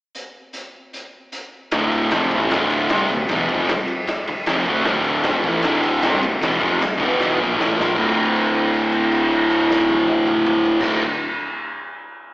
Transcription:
0.15 closed hi-hat
0.53 closed hi-hat
0.93 closed hi-hat
1.32 closed hi-hat
1.71 picked electric bass D1, distorted electric guitar D2 A2 D3, kick, snare, ride
1.91 ride
2.11 picked electric bass F1, distorted electric guitar F2 C3 F3, snare, ride
2.31 picked electric bass A1, distorted electric guitar A2, kick, ride
2.35 distorted electric guitar E3 A3
2.50 picked electric bass D1, distorted electric guitar D2 A2 D3, snare, ride
2.70 ride
2.89 picked electric bass C2, distorted electric guitar C3 G3 C4, snare, ride
3.09 picked electric bass D1, distorted electric guitar D2 A2, ride
3.29 picked electric bass E1, distorted electric guitar E2 B2, kick, snare, ride
3.33 distorted electric guitar E3
3.49 picked electric bass F1, distorted electric guitar F2 C3, kick, ride
3.54 distorted electric guitar F3
3.68 snare, ride
3.88 ride
4.08 kick, snare, ride
4.27 muted distorted electric guitar stroke, muted picked electric bass stroke, ride
4.46 distorted electric guitar F2 C3, snare, ride
4.51 picked electric bass F1, distorted electric guitar F3
4.65 picked electric bass D2, distorted electric guitar D3 A3, kick, ride
4.70 distorted electric guitar D4
4.84 picked electric bass D1, distorted electric guitar D2 A2 D3, kick, snare, ride
5.04 ride
5.23 distorted electric guitar F2 C3, snare, ride
5.28 picked electric bass F1, distorted electric guitar F3
5.44 picked electric bass A1, distorted electric guitar A2 E3 A3, kick, ride
5.62 picked electric bass D1, distorted electric guitar D2 A2 D3, snare, ride
5.83 ride
6.02 picked electric bass C2, distorted electric guitar C3 G3, snare, ride
6.06 distorted electric guitar C4
6.22 picked electric bass D1, distorted electric guitar D2 A2, ride
6.42 picked electric bass E1, distorted electric guitar E2 B2 E3, kick, snare, ride
6.60 picked electric bass F1, distorted electric guitar F2 C3 F3, kick, ride
6.81 snare, ride
6.97 picked electric bass E1, distorted electric guitar E2 B2 E3, kick, ride
7.20 snare
7.38 picked electric bass A#1, distorted electric guitar A#2 F3 A#3, kick
7.57 picked electric bass A1, distorted electric guitar A2 E3 A3, snare
7.76 distorted electric guitar A#2 F3 A#3
7.80 picked electric bass A#1, snare
7.95 picked electric bass D1, distorted electric guitar D2 A2, kick, crash
8.00 distorted electric guitar D3
8.16 kick, crash
8.36 crash
8.54 kick, crash
8.74 crash
8.92 kick, crash
9.12 crash
9.31 kick, crash
9.50 crash
9.71 snare
9.90 high tom
10.07 high tom
10.27 mid tom
10.47 mid tom
10.65 floor tom
10.80 picked electric bass D1, distorted electric guitar D2 A2, kick, snare, crash
10.86 distorted electric guitar D3

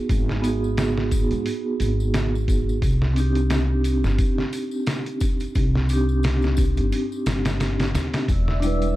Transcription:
Already playing: vibraphone B3 D#4 F#4 G#4
0.09 upright bass G#1, kick, open hi-hat, tambourine
0.29 snare
0.42 vibraphone B3 D#4, open hi-hat, tambourine
0.46 vibraphone F#4 G#4
0.64 tambourine
0.77 snare, open hi-hat, tambourine
0.97 snare
1.11 kick, open hi-hat, tambourine
1.31 upright bass G#2, closed hi-hat, tambourine
1.46 open hi-hat, tambourine
1.80 upright bass G#1, open hi-hat, tambourine
2.00 tambourine
2.14 snare, open hi-hat, tambourine
2.35 tambourine
2.48 kick, open hi-hat, tambourine
2.69 tambourine
2.82 upright bass C2, kick, open hi-hat, tambourine
3.02 snare
3.13 vibraphone C4 D4, open hi-hat
3.18 vibraphone D#4 G4, tambourine
3.35 closed hi-hat, tambourine
3.50 snare, open hi-hat, tambourine
3.84 open hi-hat, tambourine
4.04 upright bass G1, snare, tambourine
4.18 kick, open hi-hat, tambourine
4.38 snare
4.53 open hi-hat, tambourine
4.71 tambourine
4.86 snare, open hi-hat, tambourine
5.06 closed hi-hat, tambourine
5.20 kick, open hi-hat, tambourine
5.40 closed hi-hat, tambourine
5.55 upright bass C2, kick, open hi-hat, tambourine
5.75 snare
5.87 vibraphone C4 D4, open hi-hat, tambourine
5.92 vibraphone D#4 G4
6.09 tambourine
6.23 snare, open hi-hat, tambourine
6.42 snare, tambourine
6.57 kick, open hi-hat, tambourine
6.77 upright bass G1, closed hi-hat, tambourine
6.92 open hi-hat, tambourine
7.12 tambourine
7.26 upright bass G1, snare, open hi-hat, tambourine
7.45 snare, open hi-hat, tambourine
7.60 snare, open hi-hat, tambourine
7.80 snare, open hi-hat, tambourine
7.94 upright bass D#2, snare, open hi-hat, tambourine
8.14 snare, open hi-hat, tambourine
8.28 upright bass E1, analog synth pad D5 E5 E6, kick, open hi-hat, tambourine
8.48 snare
8.60 vibraphone D4 E4, open hi-hat, tambourine
8.64 vibraphone G3 B4
8.82 closed hi-hat, tambourine

